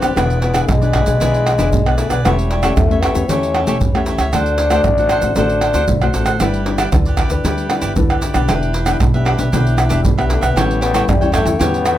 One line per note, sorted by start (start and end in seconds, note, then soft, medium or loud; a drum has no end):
0.00 0.14 F#1 medium
0.00 0.13 D3 soft
0.00 0.12 F#3 medium
0.00 0.12 B3 medium
0.00 0.15 C4 medium
0.00 0.12 D4 medium
0.00 0.15 G4 medium
0.00 0.15 B4 medium
0.00 0.14 D5 medium
0.00 pandeiro medium
0.00 tamborim medium
0.00 shaker medium
0.15 0.61 E1 medium
0.15 0.65 E3 medium
0.15 0.40 B3 medium
0.15 0.40 D4 medium
0.15 0.40 E4 medium
0.15 0.41 G#4 medium
0.15 0.42 B4 medium
0.15 0.42 D5 medium
0.15 pandeiro medium
0.15 tamborim medium
0.15 shaker medium
0.15 surdo medium
0.30 pandeiro soft
0.30 shaker soft
0.41 0.71 B3 medium
0.41 0.52 E4 soft
0.41 0.53 G#4 soft
0.41 0.53 B4 soft
0.41 0.53 D5 medium
0.41 pandeiro medium
0.53 0.76 B3 medium
0.53 0.76 D4 medium
0.53 0.64 E4 medium
0.53 0.76 G#4 medium
0.53 0.64 G#4 medium
0.53 0.64 B4 medium
0.53 0.64 D5 medium
0.53 pandeiro medium
0.53 tamborim medium
0.53 shaker medium
0.68 1.02 B1 loud
0.68 1.18 B2 soft
0.68 1.99 G#3 loud
0.68 pandeiro medium
0.68 tamborim medium
0.68 shaker medium
0.68 surdo medium
0.81 1.04 B3 medium
0.81 1.04 D4 medium
0.81 1.04 G#4 medium
0.81 0.93 G#4 soft
0.81 0.94 B4 soft
0.81 0.93 D5 soft
0.81 pandeiro soft
0.81 shaker soft
0.93 1.06 E4 medium
0.93 1.06 G#4 medium
0.93 1.06 B4 medium
0.93 1.05 D5 medium
0.93 pandeiro medium
0.93 tamborim medium
0.93 surdo medium
1.06 1.18 B1 medium
1.06 1.16 B3 medium
1.06 1.16 D4 medium
1.06 1.16 G#4 medium
1.06 1.20 G#4 soft
1.06 1.19 B4 soft
1.06 1.19 D5 soft
1.06 pandeiro medium
1.06 shaker medium
1.20 1.54 B1 medium
1.20 1.70 E3 medium
1.20 1.45 B3 medium
1.20 1.45 D4 medium
1.20 1.45 E4 medium
1.20 1.46 G#4 medium
1.20 1.45 G#4 medium
1.20 1.46 B4 medium
1.20 1.46 D5 medium
1.20 pandeiro medium
1.20 shaker medium
1.20 surdo medium
1.34 pandeiro soft
1.34 shaker soft
1.46 1.58 E4 soft
1.46 1.58 G#4 soft
1.46 1.59 B4 soft
1.46 1.59 D5 soft
1.46 pandeiro medium
1.46 tamborim medium
1.58 1.70 E1 medium
1.58 1.81 B3 medium
1.58 1.81 D4 medium
1.58 1.68 E4 medium
1.58 1.81 G#4 medium
1.58 1.69 G#4 medium
1.58 1.69 B4 medium
1.58 1.69 D5 medium
1.58 pandeiro medium
1.58 shaker medium
1.73 2.06 B1 medium
1.73 2.22 B2 medium
1.73 pandeiro medium
1.73 shaker medium
1.73 surdo medium
1.86 2.21 B3 medium
1.86 2.21 D4 medium
1.86 2.21 G#4 medium
1.86 1.98 G#4 soft
1.86 1.99 B4 soft
1.86 1.98 D5 soft
1.86 pandeiro soft
1.86 tamborim medium
1.86 shaker soft
1.98 2.11 A3 medium
1.98 2.11 E4 soft
1.98 2.11 G#4 soft
1.98 2.11 B4 medium
1.98 2.10 D5 medium
1.98 pandeiro medium
1.98 shaker medium
2.10 2.22 B1 medium
2.10 2.24 B3 medium
2.10 2.24 G#4 medium
2.10 2.24 B4 medium
2.10 2.24 D5 medium
2.10 pandeiro medium
2.10 tamborim medium
2.10 shaker medium
2.24 2.69 E1 loud
2.24 2.74 E3 medium
2.24 2.49 A3 medium
2.24 2.36 B3 medium
2.24 2.49 C#4 medium
2.24 2.50 G4 medium
2.24 2.50 A4 medium
2.24 2.51 C#5 medium
2.24 2.51 E5 medium
2.24 pandeiro medium
2.24 tamborim medium
2.24 shaker medium
2.24 surdo medium
2.39 pandeiro soft
2.39 shaker soft
2.49 2.78 G3 medium
2.49 2.62 G4 soft
2.49 2.63 A4 soft
2.49 2.63 C#5 medium
2.49 pandeiro medium
2.53 2.64 E5 medium
2.63 2.85 A3 medium
2.63 2.85 C#4 medium
2.63 2.73 G4 medium
2.63 2.86 G4 medium
2.63 2.73 A4 medium
2.63 2.73 C#5 medium
2.63 2.73 E5 medium
2.63 pandeiro medium
2.63 tamborim medium
2.63 shaker medium
2.77 3.10 E2 medium
2.77 3.26 E3 medium
2.77 3.04 A3 medium
2.77 pandeiro medium
2.77 tamborim medium
2.77 shaker medium
2.77 surdo loud
2.90 3.12 A3 medium
2.90 3.12 C#4 medium
2.90 3.12 G4 medium
2.90 3.02 A4 soft
2.90 3.03 C#5 soft
2.90 3.02 E5 soft
2.90 pandeiro soft
2.90 shaker soft
3.02 3.31 B3 medium
3.02 3.15 G4 medium
3.02 3.15 A4 medium
3.02 3.15 C#5 medium
3.02 3.14 E5 medium
3.02 pandeiro medium
3.02 tamborim medium
3.14 3.27 E2 medium
3.14 3.24 A3 medium
3.14 3.24 C#4 medium
3.14 3.24 G4 medium
3.14 3.28 A4 soft
3.14 3.28 C#5 soft
3.14 3.27 E5 soft
3.14 pandeiro medium
3.14 shaker medium
3.29 3.62 E2 medium
3.29 3.78 E3 medium
3.29 3.64 A3 medium
3.29 3.64 C#4 medium
3.29 4.06 C#4 medium
3.29 3.64 G4 medium
3.29 3.54 G4 medium
3.29 3.55 A4 medium
3.29 3.55 C#5 medium
3.29 3.55 E5 medium
3.29 pandeiro medium
3.29 shaker medium
3.29 surdo medium
3.43 pandeiro soft
3.43 shaker soft
3.54 3.66 G4 soft
3.54 3.67 A4 soft
3.54 3.67 C#5 medium
3.54 3.67 E5 medium
3.54 pandeiro medium
3.54 tamborim medium
3.66 3.78 E1 medium
3.66 3.89 A3 medium
3.66 3.89 C#4 medium
3.66 3.89 G4 medium
3.66 3.77 G4 medium
3.66 3.77 A4 medium
3.66 3.77 C#5 medium
3.66 3.77 E5 medium
3.66 pandeiro medium
3.66 shaker medium
3.81 4.14 E2 medium
3.81 4.30 E3 medium
3.81 pandeiro medium
3.81 shaker medium
3.81 surdo loud
3.94 4.29 A3 medium
3.94 4.29 C#4 medium
3.94 4.29 G4 medium
3.94 4.07 A4 soft
3.94 4.07 C#5 soft
3.94 4.07 E5 soft
3.94 pandeiro soft
3.94 tamborim medium
3.94 shaker soft
4.06 4.19 G4 soft
4.06 4.20 A4 soft
4.06 4.19 C#5 medium
4.06 4.18 E5 medium
4.06 pandeiro medium
4.06 shaker medium
4.18 4.30 C#2 medium
4.18 4.33 A4 medium
4.18 4.32 C#5 medium
4.18 4.32 E5 medium
4.18 pandeiro medium
4.18 tamborim medium
4.18 shaker medium
4.33 4.78 D2 loud
4.33 4.83 D3 medium
4.33 4.57 A3 medium
4.33 4.57 C4 medium
4.33 5.33 D4 loud
4.33 4.57 D4 medium
4.33 4.58 F#4 medium
4.33 4.58 A4 medium
4.33 4.59 C5 medium
4.33 4.59 F#5 medium
4.33 pandeiro medium
4.33 tamborim medium
4.33 shaker medium
4.33 surdo medium
4.46 pandeiro soft
4.46 shaker soft
4.58 4.70 D4 soft
4.58 4.70 A4 soft
4.58 4.71 C5 medium
4.58 4.71 F#5 medium
4.58 pandeiro medium
4.70 4.93 A3 medium
4.70 4.93 C4 medium
4.70 4.80 D4 medium
4.70 4.93 F#4 medium
4.70 4.81 A4 medium
4.70 4.81 C5 medium
4.70 4.81 F#5 medium
4.70 pandeiro medium
4.70 tamborim medium
4.70 shaker medium
4.84 5.18 A1 medium
4.84 5.34 A2 soft
4.84 pandeiro medium
4.84 tamborim medium
4.84 shaker medium
4.84 surdo loud
4.98 5.20 A3 medium
4.98 5.20 C4 medium
4.98 5.20 F#4 medium
4.98 5.10 A4 soft
4.98 5.11 C5 soft
4.98 5.10 F#5 soft
4.98 pandeiro soft
4.98 shaker soft
5.09 5.23 D4 medium
5.09 5.23 A4 medium
5.09 5.22 C5 medium
5.09 5.21 F#5 medium
5.09 pandeiro medium
5.09 tamborim medium
5.09 shaker medium
5.22 5.34 A1 medium
5.22 5.32 A3 medium
5.22 5.32 C4 medium
5.22 5.32 F#4 medium
5.22 5.36 A4 soft
5.22 5.36 C5 soft
5.22 5.35 F#5 soft
5.22 pandeiro medium
5.22 shaker medium
5.36 5.70 A1 medium
5.36 5.86 D3 medium
5.36 5.61 A3 medium
5.36 5.61 C4 medium
5.36 5.60 D4 medium
5.36 6.11 D4 loud
5.36 5.62 F#4 medium
5.36 5.61 A4 medium
5.36 5.62 C5 medium
5.36 5.63 F#5 medium
5.36 pandeiro medium
5.36 shaker medium
5.36 surdo medium
5.49 pandeiro soft
5.49 shaker soft
5.61 5.73 D4 soft
5.61 5.73 A4 medium
5.61 5.73 C5 medium
5.61 5.74 F#5 medium
5.61 pandeiro medium
5.61 tamborim medium
5.74 5.86 D2 medium
5.74 5.97 A3 medium
5.74 5.97 C4 medium
5.74 5.84 D4 medium
5.74 5.97 F#4 medium
5.74 5.84 A4 medium
5.74 5.84 C5 medium
5.74 5.84 F#5 medium
5.74 pandeiro medium
5.74 shaker medium
5.88 6.12 B1 medium
5.88 6.38 A2 medium
5.88 pandeiro medium
5.88 shaker medium
5.88 surdo medium
6.01 6.37 A3 medium
6.01 6.37 C4 medium
6.01 6.37 F#4 medium
6.01 6.13 A4 soft
6.01 6.14 C5 soft
6.01 6.14 F#5 soft
6.01 pandeiro soft
6.01 tamborim medium
6.01 shaker soft
6.14 6.38 A1 medium
6.14 6.26 D4 soft
6.14 6.27 A4 soft
6.14 6.26 C5 soft
6.14 6.25 F#5 medium
6.14 pandeiro medium
6.14 shaker medium
6.26 6.40 A4 medium
6.26 6.40 C5 medium
6.26 6.39 F#5 medium
6.26 pandeiro medium
6.26 tamborim medium
6.26 shaker medium
6.40 6.85 G1 medium
6.40 6.90 G3 medium
6.40 6.63 D4 medium
6.40 6.64 E4 medium
6.40 6.63 E4 medium
6.40 6.65 G4 medium
6.40 6.63 B4 medium
6.40 6.66 B4 medium
6.40 6.67 D5 medium
6.40 pandeiro medium
6.40 tamborim medium
6.40 shaker medium
6.40 surdo medium
6.54 pandeiro soft
6.54 shaker soft
6.66 6.82 D4 medium
6.66 6.77 E4 soft
6.66 6.82 E4 medium
6.66 6.77 G4 soft
6.66 6.78 B4 soft
6.66 6.82 B4 medium
6.66 6.78 D5 medium
6.66 pandeiro medium
6.78 6.88 E4 medium
6.78 6.88 G4 medium
6.78 6.88 B4 medium
6.78 6.89 D5 medium
6.78 pandeiro medium
6.78 tamborim medium
6.78 shaker medium
6.92 7.26 D2 loud
6.92 7.42 D3 medium
6.92 7.28 D4 medium
6.92 7.28 E4 soft
6.92 7.28 B4 medium
6.92 pandeiro medium
6.92 tamborim medium
6.92 shaker medium
6.92 surdo loud
7.06 7.17 G4 soft
7.06 7.18 B4 soft
7.06 7.18 D5 soft
7.06 pandeiro soft
7.06 shaker soft
7.17 7.30 E4 medium
7.17 7.31 G4 medium
7.17 7.30 B4 medium
7.17 7.29 D5 medium
7.17 pandeiro medium
7.17 tamborim medium
7.17 shaker medium
7.17 surdo medium
7.30 7.42 D2 medium
7.30 7.66 D4 medium
7.30 7.66 E4 medium
7.30 7.44 G4 soft
7.30 7.66 B4 medium
7.30 7.44 B4 soft
7.30 7.43 D5 soft
7.30 pandeiro medium
7.30 shaker medium
7.44 7.78 D2 medium
7.44 7.94 G3 medium
7.44 7.68 E4 medium
7.44 7.69 G4 medium
7.44 7.70 B4 medium
7.44 7.70 D5 medium
7.44 pandeiro medium
7.44 shaker medium
7.44 surdo medium
7.58 pandeiro soft
7.58 shaker soft
7.70 7.92 D4 soft
7.70 7.80 E4 soft
7.70 7.92 E4 medium
7.70 7.81 G4 soft
7.70 7.93 B4 medium
7.70 7.81 B4 soft
7.70 7.82 D5 medium
7.70 pandeiro medium
7.70 tamborim medium
7.81 7.94 G1 medium
7.81 7.92 E4 medium
7.81 7.92 G4 medium
7.81 7.92 B4 medium
7.81 7.92 D5 medium
7.81 pandeiro medium
7.81 shaker medium
7.96 8.30 D2 medium
7.96 8.46 D3 medium
7.96 8.21 D4 medium
7.96 8.21 E4 medium
7.96 8.22 B4 medium
7.96 pandeiro medium
7.96 shaker medium
7.96 surdo loud
8.10 8.21 G4 soft
8.10 8.22 B4 soft
8.10 8.22 D5 soft
8.10 pandeiro soft
8.10 tamborim medium
8.10 shaker soft
8.21 8.34 E4 soft
8.21 8.34 G4 soft
8.21 8.34 B4 soft
8.21 8.33 D5 medium
8.21 pandeiro medium
8.21 shaker medium
8.34 8.46 B1 medium
8.34 8.70 B3 medium
8.34 8.70 D4 medium
8.34 8.48 G4 medium
8.34 8.71 G4 medium
8.34 8.47 B4 medium
8.34 8.47 D5 medium
8.34 pandeiro medium
8.34 tamborim medium
8.34 shaker medium
8.48 8.93 E1 medium
8.48 8.98 E3 medium
8.48 8.72 D4 medium
8.48 8.73 G4 medium
8.48 8.73 B4 medium
8.48 8.74 E5 medium
8.48 pandeiro medium
8.48 tamborim medium
8.48 shaker medium
8.48 surdo medium
8.63 pandeiro soft
8.63 shaker soft
8.73 8.85 D4 medium
8.73 8.85 G4 soft
8.73 8.86 B4 medium
8.73 8.86 E5 soft
8.73 pandeiro medium
8.86 9.09 B3 medium
8.86 8.96 D4 medium
8.86 9.09 D4 medium
8.86 8.96 G4 medium
8.86 9.09 G4 medium
8.86 8.96 B4 medium
8.86 8.97 E5 medium
8.86 pandeiro medium
8.86 tamborim medium
8.86 shaker medium
9.00 9.34 B1 medium
9.00 9.50 B2 medium
9.00 pandeiro medium
9.00 tamborim medium
9.00 shaker medium
9.00 surdo loud
9.14 9.36 B3 medium
9.14 9.36 D4 medium
9.14 9.37 G4 medium
9.14 9.25 G4 soft
9.14 9.26 B4 soft
9.14 9.26 E5 medium
9.14 pandeiro soft
9.14 shaker soft
9.25 9.38 D4 medium
9.25 9.39 G4 medium
9.25 9.38 B4 medium
9.25 9.37 E5 medium
9.25 pandeiro medium
9.25 tamborim medium
9.38 9.50 B1 medium
9.38 9.48 B3 medium
9.38 9.48 D4 medium
9.38 9.48 G4 medium
9.38 9.52 G4 soft
9.38 9.51 B4 soft
9.38 9.51 E5 soft
9.38 pandeiro medium
9.38 shaker medium
9.52 9.86 B1 medium
9.52 10.02 E3 medium
9.52 9.88 B3 medium
9.52 9.75 D4 medium
9.52 9.88 D4 medium
9.52 9.76 G4 medium
9.52 9.88 G4 medium
9.52 9.77 B4 medium
9.52 9.77 E5 medium
9.52 pandeiro medium
9.52 shaker medium
9.52 surdo medium
9.67 pandeiro soft
9.67 shaker soft
9.77 9.88 D4 soft
9.77 9.88 G4 soft
9.77 9.89 B4 medium
9.77 9.89 E5 medium
9.77 pandeiro medium
9.77 tamborim medium
9.77 shaker medium
9.89 10.02 E1 medium
9.89 10.13 B3 medium
9.89 9.99 D4 medium
9.89 10.13 D4 medium
9.89 10.00 G4 medium
9.89 10.13 G4 medium
9.89 10.00 B4 medium
9.89 10.00 E5 medium
9.89 pandeiro medium
9.89 shaker medium
10.04 10.38 B1 medium
10.04 10.54 B2 medium
10.04 pandeiro medium
10.04 shaker medium
10.04 surdo loud
10.18 10.53 B3 medium
10.18 10.53 D4 medium
10.18 10.53 G4 medium
10.18 10.29 G4 soft
10.18 10.30 B4 soft
10.18 10.30 E5 soft
10.18 pandeiro soft
10.18 tamborim medium
10.18 shaker soft
10.29 10.44 A3 medium
10.29 10.42 D4 medium
10.29 10.42 G4 soft
10.29 10.41 B4 medium
10.29 10.40 E5 medium
10.29 pandeiro medium
10.41 10.54 B1 medium
10.41 10.81 B3 loud
10.41 10.55 G4 medium
10.41 10.55 B4 medium
10.41 10.54 E5 medium
10.41 pandeiro medium
10.41 tamborim medium
10.41 shaker medium
10.56 11.01 A1 medium
10.56 11.06 A2 medium
10.56 10.81 G3 medium
10.56 10.81 C#4 medium
10.56 10.81 E4 medium
10.56 10.80 G4 medium
10.56 10.81 A4 medium
10.56 10.81 C#5 medium
10.56 10.82 G5 medium
10.56 pandeiro medium
10.56 tamborim medium
10.56 shaker medium
10.56 surdo medium
10.71 pandeiro soft
10.71 shaker soft
10.81 11.11 B3 loud
10.81 10.93 G4 medium
10.81 10.93 A4 medium
10.81 10.94 C#5 soft
10.81 10.94 G5 medium
10.81 pandeiro medium
10.94 11.16 G3 medium
10.94 11.16 C#4 medium
10.94 11.17 E4 medium
10.94 11.04 G4 medium
10.94 11.04 A4 medium
10.94 11.04 C#5 medium
10.94 11.04 G5 medium
10.94 pandeiro medium
10.94 tamborim medium
10.94 shaker medium
11.08 11.42 E2 medium
11.08 11.57 E3 medium
11.08 11.34 G3 loud
11.08 pandeiro medium
11.08 tamborim medium
11.08 shaker medium
11.08 surdo loud
11.21 11.43 G3 medium
11.21 11.43 C#4 medium
11.21 11.44 E4 medium
11.21 11.32 A4 soft
11.21 11.32 C#5 soft
11.21 11.33 G5 soft
11.21 pandeiro soft
11.21 shaker soft
11.32 11.63 A3 loud
11.32 11.45 G4 medium
11.32 11.46 A4 medium
11.32 11.45 C#5 medium
11.32 11.44 G5 medium
11.32 pandeiro medium
11.32 tamborim medium
11.32 shaker medium
11.32 surdo medium
11.45 11.57 E2 loud
11.45 11.56 G3 medium
11.45 11.56 C#4 medium
11.45 11.56 E4 medium
11.45 11.59 A4 soft
11.45 11.59 C#5 soft
11.45 11.58 G5 soft
11.45 pandeiro medium
11.45 shaker medium
11.59 11.94 E2 medium
11.59 11.98 A2 medium
11.59 11.85 G3 medium
11.59 11.98 B3 loud
11.59 11.85 C#4 medium
11.59 11.85 E4 medium
11.59 11.84 G4 medium
11.59 11.84 A4 medium
11.59 11.85 C#5 medium
11.59 11.85 G5 medium
11.59 pandeiro medium
11.59 shaker medium
11.59 surdo medium
11.74 pandeiro soft
11.74 shaker soft
11.85 11.96 G4 soft
11.85 11.97 A4 soft
11.85 11.97 C#5 soft
11.85 11.97 G5 medium
11.85 pandeiro medium
11.85 tamborim medium
11.85 shaker medium